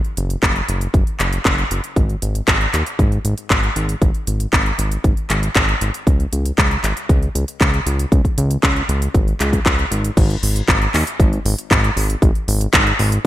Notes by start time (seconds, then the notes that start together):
0.05 closed hi-hat
0.17 F#1, closed hi-hat
0.30 closed hi-hat
0.43 F#1, kick, clap, closed hi-hat
0.56 closed hi-hat
0.69 F#1, closed hi-hat
0.81 closed hi-hat
0.94 F#1, kick, closed hi-hat
1.07 closed hi-hat
1.20 F#1, clap, closed hi-hat
1.33 closed hi-hat
1.45 F#1, kick, clap, closed hi-hat
1.58 closed hi-hat
1.71 F#1, closed hi-hat
1.84 closed hi-hat
1.96 G#1, kick, closed hi-hat
2.10 closed hi-hat
2.22 G#1, closed hi-hat
2.35 closed hi-hat
2.48 G#1, kick, clap, closed hi-hat
2.61 closed hi-hat
2.74 D#2, clap, closed hi-hat
2.86 closed hi-hat
2.99 G#1, kick, closed hi-hat
3.12 closed hi-hat
3.25 G#1, closed hi-hat
3.38 closed hi-hat
3.50 G#1, kick, clap, closed hi-hat
3.63 closed hi-hat
3.76 G#1, closed hi-hat
3.89 closed hi-hat
4.02 G#1, kick, closed hi-hat
4.14 closed hi-hat
4.27 G#1, closed hi-hat
4.40 closed hi-hat
4.53 G#1, kick, clap, closed hi-hat
4.66 closed hi-hat
4.79 G#1, closed hi-hat
4.92 closed hi-hat
5.04 G#1, kick, closed hi-hat
5.17 closed hi-hat
5.30 G#1, clap, closed hi-hat
5.43 closed hi-hat
5.56 G#1, kick, clap, closed hi-hat
5.69 closed hi-hat
5.81 G#1, closed hi-hat
5.94 closed hi-hat
6.07 C#2, kick, closed hi-hat
6.20 closed hi-hat
6.33 C#2, closed hi-hat
6.46 closed hi-hat
6.58 C#2, kick, clap, closed hi-hat
6.71 closed hi-hat
6.84 G#1, clap, closed hi-hat
6.97 closed hi-hat
7.09 C#2, kick, closed hi-hat
7.22 closed hi-hat
7.35 C#2, closed hi-hat
7.48 closed hi-hat
7.61 C#2, kick, clap, closed hi-hat
7.74 closed hi-hat
7.86 C#2, closed hi-hat
7.99 closed hi-hat
8.12 C#2, kick, closed hi-hat
8.25 kick, closed hi-hat
8.38 C#2, closed hi-hat
8.51 closed hi-hat
8.63 C#2, kick, clap, closed hi-hat
8.76 closed hi-hat
8.89 C#2, closed hi-hat
9.02 closed hi-hat
9.14 G#1, kick, closed hi-hat
9.28 closed hi-hat
9.40 C#2, clap, closed hi-hat
9.53 kick, closed hi-hat
9.66 C#2, kick, clap, closed hi-hat
9.79 closed hi-hat
9.91 G#1, closed hi-hat
10.05 closed hi-hat
10.17 G#1, kick, closed hi-hat, crash
10.30 closed hi-hat
10.43 G#1, open hi-hat
10.56 closed hi-hat
10.68 G#1, kick, clap, closed hi-hat
10.82 closed hi-hat
10.94 D#2, clap, open hi-hat
11.07 closed hi-hat
11.20 G#1, kick, closed hi-hat
11.33 closed hi-hat
11.45 G#1, open hi-hat
11.59 closed hi-hat
11.71 G#1, kick, clap, closed hi-hat
11.84 closed hi-hat
11.97 G#1, open hi-hat
12.10 closed hi-hat
12.22 G#1, kick, closed hi-hat
12.35 closed hi-hat
12.48 G#1, open hi-hat
12.61 closed hi-hat
12.73 G#1, kick, clap, closed hi-hat
12.87 closed hi-hat
12.99 G#1, open hi-hat
13.12 closed hi-hat